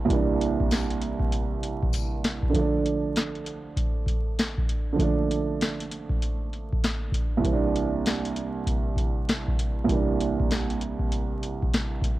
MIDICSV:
0, 0, Header, 1, 3, 480
1, 0, Start_track
1, 0, Key_signature, -1, "minor"
1, 0, Tempo, 612245
1, 72, Time_signature, 4, 2, 24, 8
1, 9559, End_track
2, 0, Start_track
2, 0, Title_t, "Upright piano"
2, 0, Program_c, 0, 0
2, 0, Control_c, 0, 64, 127
2, 38, Note_on_c, 0, 36, 78
2, 56, Note_on_c, 0, 52, 74
2, 74, Note_on_c, 0, 55, 71
2, 93, Note_on_c, 0, 58, 66
2, 110, Note_on_c, 0, 62, 85
2, 1944, Note_off_c, 0, 36, 0
2, 1953, Note_off_c, 0, 52, 0
2, 1958, Note_on_c, 0, 50, 82
2, 1962, Note_off_c, 0, 55, 0
2, 1971, Note_off_c, 0, 58, 0
2, 1980, Note_off_c, 0, 62, 0
2, 1982, Note_on_c, 0, 53, 67
2, 2003, Control_c, 0, 64, 0
2, 2006, Note_on_c, 0, 57, 66
2, 2030, Note_on_c, 0, 62, 86
2, 2124, Control_c, 0, 64, 127
2, 3851, Note_off_c, 0, 50, 0
2, 3863, Note_on_c, 0, 50, 80
2, 3875, Note_off_c, 0, 53, 0
2, 3887, Note_on_c, 0, 53, 69
2, 3888, Note_off_c, 0, 57, 0
2, 3900, Note_off_c, 0, 62, 0
2, 3911, Note_on_c, 0, 57, 76
2, 3935, Note_on_c, 0, 62, 87
2, 5776, Note_off_c, 0, 50, 0
2, 5780, Note_on_c, 0, 36, 78
2, 5788, Note_off_c, 0, 53, 0
2, 5798, Note_on_c, 0, 52, 74
2, 5800, Note_off_c, 0, 57, 0
2, 5812, Note_off_c, 0, 62, 0
2, 5816, Note_on_c, 0, 55, 66
2, 5834, Note_on_c, 0, 58, 67
2, 5841, Control_c, 0, 64, 0
2, 5852, Note_on_c, 0, 60, 70
2, 5903, Note_on_c, 0, 62, 89
2, 5906, Note_off_c, 0, 60, 0
2, 5977, Control_c, 0, 64, 127
2, 7695, Note_off_c, 0, 36, 0
2, 7704, Note_off_c, 0, 52, 0
2, 7713, Note_off_c, 0, 55, 0
2, 7718, Note_on_c, 0, 36, 79
2, 7722, Note_off_c, 0, 58, 0
2, 7736, Note_on_c, 0, 52, 73
2, 7754, Note_on_c, 0, 55, 70
2, 7756, Note_off_c, 0, 62, 0
2, 7772, Note_on_c, 0, 58, 65
2, 7790, Note_on_c, 0, 62, 82
2, 9559, Note_off_c, 0, 36, 0
2, 9559, Note_off_c, 0, 52, 0
2, 9559, Note_off_c, 0, 55, 0
2, 9559, Note_off_c, 0, 58, 0
2, 9559, Note_off_c, 0, 62, 0
2, 9559, End_track
3, 0, Start_track
3, 0, Title_t, "Drums"
3, 72, Note_on_c, 9, 36, 120
3, 78, Note_on_c, 9, 42, 87
3, 150, Note_off_c, 9, 36, 0
3, 156, Note_off_c, 9, 42, 0
3, 323, Note_on_c, 9, 42, 84
3, 401, Note_off_c, 9, 42, 0
3, 472, Note_on_c, 9, 36, 102
3, 550, Note_off_c, 9, 36, 0
3, 556, Note_on_c, 9, 54, 70
3, 559, Note_on_c, 9, 42, 96
3, 567, Note_on_c, 9, 38, 119
3, 635, Note_off_c, 9, 54, 0
3, 637, Note_off_c, 9, 42, 0
3, 645, Note_off_c, 9, 38, 0
3, 709, Note_on_c, 9, 42, 57
3, 788, Note_off_c, 9, 42, 0
3, 796, Note_on_c, 9, 42, 71
3, 875, Note_off_c, 9, 42, 0
3, 937, Note_on_c, 9, 36, 102
3, 1016, Note_off_c, 9, 36, 0
3, 1038, Note_on_c, 9, 42, 95
3, 1116, Note_off_c, 9, 42, 0
3, 1280, Note_on_c, 9, 42, 69
3, 1359, Note_off_c, 9, 42, 0
3, 1433, Note_on_c, 9, 36, 94
3, 1512, Note_off_c, 9, 36, 0
3, 1512, Note_on_c, 9, 36, 61
3, 1513, Note_on_c, 9, 54, 71
3, 1521, Note_on_c, 9, 42, 96
3, 1590, Note_off_c, 9, 36, 0
3, 1592, Note_off_c, 9, 54, 0
3, 1600, Note_off_c, 9, 42, 0
3, 1759, Note_on_c, 9, 42, 95
3, 1761, Note_on_c, 9, 38, 96
3, 1837, Note_off_c, 9, 42, 0
3, 1839, Note_off_c, 9, 38, 0
3, 1902, Note_on_c, 9, 36, 97
3, 1980, Note_off_c, 9, 36, 0
3, 1991, Note_on_c, 9, 36, 114
3, 1997, Note_on_c, 9, 42, 82
3, 2070, Note_off_c, 9, 36, 0
3, 2075, Note_off_c, 9, 42, 0
3, 2242, Note_on_c, 9, 42, 79
3, 2320, Note_off_c, 9, 42, 0
3, 2478, Note_on_c, 9, 42, 92
3, 2486, Note_on_c, 9, 38, 121
3, 2557, Note_off_c, 9, 42, 0
3, 2565, Note_off_c, 9, 38, 0
3, 2629, Note_on_c, 9, 42, 54
3, 2707, Note_off_c, 9, 42, 0
3, 2716, Note_on_c, 9, 42, 72
3, 2794, Note_off_c, 9, 42, 0
3, 2953, Note_on_c, 9, 36, 94
3, 2958, Note_on_c, 9, 42, 92
3, 3032, Note_off_c, 9, 36, 0
3, 3036, Note_off_c, 9, 42, 0
3, 3186, Note_on_c, 9, 36, 90
3, 3201, Note_on_c, 9, 42, 67
3, 3264, Note_off_c, 9, 36, 0
3, 3279, Note_off_c, 9, 42, 0
3, 3441, Note_on_c, 9, 42, 92
3, 3445, Note_on_c, 9, 38, 110
3, 3520, Note_off_c, 9, 42, 0
3, 3524, Note_off_c, 9, 38, 0
3, 3589, Note_on_c, 9, 36, 99
3, 3668, Note_off_c, 9, 36, 0
3, 3679, Note_on_c, 9, 42, 87
3, 3757, Note_off_c, 9, 42, 0
3, 3912, Note_on_c, 9, 36, 114
3, 3918, Note_on_c, 9, 42, 83
3, 3990, Note_off_c, 9, 36, 0
3, 3996, Note_off_c, 9, 42, 0
3, 4162, Note_on_c, 9, 42, 83
3, 4240, Note_off_c, 9, 42, 0
3, 4399, Note_on_c, 9, 42, 94
3, 4407, Note_on_c, 9, 38, 122
3, 4477, Note_off_c, 9, 42, 0
3, 4485, Note_off_c, 9, 38, 0
3, 4549, Note_on_c, 9, 42, 54
3, 4628, Note_off_c, 9, 42, 0
3, 4636, Note_on_c, 9, 42, 70
3, 4715, Note_off_c, 9, 42, 0
3, 4777, Note_on_c, 9, 36, 96
3, 4856, Note_off_c, 9, 36, 0
3, 4878, Note_on_c, 9, 42, 88
3, 4956, Note_off_c, 9, 42, 0
3, 5120, Note_on_c, 9, 42, 65
3, 5198, Note_off_c, 9, 42, 0
3, 5273, Note_on_c, 9, 36, 89
3, 5351, Note_off_c, 9, 36, 0
3, 5361, Note_on_c, 9, 42, 94
3, 5365, Note_on_c, 9, 38, 110
3, 5439, Note_off_c, 9, 42, 0
3, 5443, Note_off_c, 9, 38, 0
3, 5581, Note_on_c, 9, 36, 91
3, 5599, Note_on_c, 9, 42, 90
3, 5659, Note_off_c, 9, 36, 0
3, 5677, Note_off_c, 9, 42, 0
3, 5832, Note_on_c, 9, 36, 114
3, 5837, Note_on_c, 9, 42, 85
3, 5910, Note_off_c, 9, 36, 0
3, 5916, Note_off_c, 9, 42, 0
3, 6082, Note_on_c, 9, 42, 82
3, 6160, Note_off_c, 9, 42, 0
3, 6319, Note_on_c, 9, 42, 95
3, 6327, Note_on_c, 9, 38, 116
3, 6397, Note_off_c, 9, 42, 0
3, 6405, Note_off_c, 9, 38, 0
3, 6469, Note_on_c, 9, 42, 54
3, 6547, Note_off_c, 9, 42, 0
3, 6556, Note_on_c, 9, 42, 69
3, 6634, Note_off_c, 9, 42, 0
3, 6793, Note_on_c, 9, 36, 89
3, 6798, Note_on_c, 9, 42, 91
3, 6872, Note_off_c, 9, 36, 0
3, 6876, Note_off_c, 9, 42, 0
3, 7026, Note_on_c, 9, 36, 93
3, 7040, Note_on_c, 9, 42, 69
3, 7104, Note_off_c, 9, 36, 0
3, 7118, Note_off_c, 9, 42, 0
3, 7281, Note_on_c, 9, 42, 91
3, 7285, Note_on_c, 9, 38, 112
3, 7359, Note_off_c, 9, 42, 0
3, 7363, Note_off_c, 9, 38, 0
3, 7429, Note_on_c, 9, 36, 100
3, 7508, Note_off_c, 9, 36, 0
3, 7519, Note_on_c, 9, 42, 92
3, 7597, Note_off_c, 9, 42, 0
3, 7751, Note_on_c, 9, 36, 109
3, 7757, Note_on_c, 9, 42, 87
3, 7830, Note_off_c, 9, 36, 0
3, 7835, Note_off_c, 9, 42, 0
3, 8001, Note_on_c, 9, 42, 80
3, 8079, Note_off_c, 9, 42, 0
3, 8151, Note_on_c, 9, 36, 102
3, 8229, Note_off_c, 9, 36, 0
3, 8237, Note_on_c, 9, 42, 95
3, 8245, Note_on_c, 9, 38, 122
3, 8315, Note_off_c, 9, 42, 0
3, 8324, Note_off_c, 9, 38, 0
3, 8388, Note_on_c, 9, 42, 55
3, 8466, Note_off_c, 9, 42, 0
3, 8475, Note_on_c, 9, 42, 70
3, 8553, Note_off_c, 9, 42, 0
3, 8616, Note_on_c, 9, 36, 93
3, 8695, Note_off_c, 9, 36, 0
3, 8716, Note_on_c, 9, 42, 92
3, 8795, Note_off_c, 9, 42, 0
3, 8960, Note_on_c, 9, 42, 68
3, 9038, Note_off_c, 9, 42, 0
3, 9113, Note_on_c, 9, 36, 86
3, 9191, Note_off_c, 9, 36, 0
3, 9200, Note_on_c, 9, 42, 89
3, 9204, Note_on_c, 9, 38, 112
3, 9279, Note_off_c, 9, 42, 0
3, 9283, Note_off_c, 9, 38, 0
3, 9421, Note_on_c, 9, 36, 90
3, 9439, Note_on_c, 9, 42, 89
3, 9499, Note_off_c, 9, 36, 0
3, 9517, Note_off_c, 9, 42, 0
3, 9559, End_track
0, 0, End_of_file